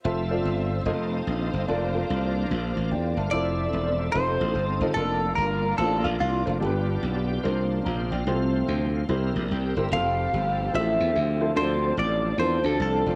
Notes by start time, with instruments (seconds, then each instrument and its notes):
0.03 slap bass F1, string section C4 F4 C5 E5, tonewheel organ C4 F4 A4 E5, grand piano F4 A4 C5 E5
0.31 grand piano F4 A4 C5 D5
0.45 slap bass G1
0.85 slap bass F1, tonewheel organ C4 F4 G#4 D#5, string section C4 D#4 F4, grand piano F4 A4 C5 D#5
0.90 tonewheel organ A4
1.27 slap bass A#1
1.53 slap bass G1
1.68 slap bass F1, tonewheel organ A#3 F4 D5, string section A#3 D4, grand piano F4 A4 A#4 D5
1.94 grand piano F4 A4 A#4 F5
2.10 slap bass C2
2.51 slap bass A#1
2.75 slap bass A1, tonewheel organ F5
2.91 slap bass E2, grand piano D5 G5, tonewheel organ A5
3.17 slap bass G1, grand piano E5 A5, tonewheel organ F5
3.31 slap bass F1, tonewheel organ F3 C4 A4 E5, string section C4 A4 E5, grand piano E4 F4 A4 C5, clean electric guitar D5
3.73 slap bass E1
4.12 slap bass F1, tonewheel organ C4 F4 A4 D#5, string section C4 D#4, grand piano D#4 F4 A4 C5, clean electric guitar C5
4.41 slap bass A1
4.55 slap bass G1
4.80 slap bass G1, grand piano D#4 F4 A4 D#5
4.94 slap bass F1, tonewheel organ A#3 F4 D5, grand piano A#3 D4 F4 A4, clean electric guitar A4
4.99 string section A#3 D4 F4
5.35 slap bass G1, clean electric guitar A#4
5.78 slap bass A1, grand piano C4 F4 A4 C5, clean electric guitar A4
5.84 grand piano D4
6.04 slap bass A#1, clean electric guitar F4
6.20 slap bass C2, clean electric guitar F4
6.46 slap bass F1, grand piano D4 F4 A4 C5
6.60 slap bass G1, grand piano G2 D4 F4 G4 A4, tonewheel organ A3 F4 G4 D5, string section B3 G4
6.65 tonewheel organ B3, grand piano B4
7.03 slap bass B1, tonewheel organ A5
7.29 tonewheel organ G5
7.43 slap bass C2, grand piano C3 D4 F4 A#4 C5, tonewheel organ A#3 D4 F4 C5, string section A#3 C4
7.70 tonewheel organ A5
7.85 slap bass A#1, grand piano F5 A#5, tonewheel organ G5
8.11 slap bass A#1, grand piano D5 G5, tonewheel organ F5
8.27 slap bass C2, grand piano C3 C4 F4 G4 C5, string section F3 A3, tonewheel organ G#3 C4 F4 C5
8.32 tonewheel organ A3, grand piano A4
8.67 slap bass D2, tonewheel organ G5
8.95 tonewheel organ F5
9.09 slap bass C2, grand piano C3 E4 G4 A#4 C5, tonewheel organ G3 C4 D#4 A#4, string section G3 A#3 G4
9.15 tonewheel organ E4
9.36 slap bass A#1
9.51 slap bass C2, tonewheel organ G5
9.76 slap bass G1, grand piano E4 G4 A#4 C5, tonewheel organ E5
9.89 slap bass F1, tonewheel organ F3 C4 G#4, grand piano C4 F4 A4 C5, string section C4, clean electric guitar F5
9.93 string section F3 A3, tonewheel organ A4
10.34 slap bass G1
10.73 slap bass A1, grand piano E4 F4 G#4 C5, clean electric guitar E5
10.78 grand piano A4
11.00 slap bass E2
11.15 slap bass D2
11.41 grand piano E4 F4 A4 C5
11.55 slap bass D2, grand piano D3 D4 F4 A4 C5, tonewheel organ F3 C4 D4 A4, string section D4, clean electric guitar C5
11.97 slap bass A1, clean electric guitar D5
12.38 slap bass E2, grand piano D4 F4 A4 A#4, clean electric guitar C5
12.44 grand piano C5
12.64 slap bass D2, clean electric guitar A4
12.80 slap bass C2, clean electric guitar A4
13.06 slap bass F1, grand piano D4 F4 A4 D5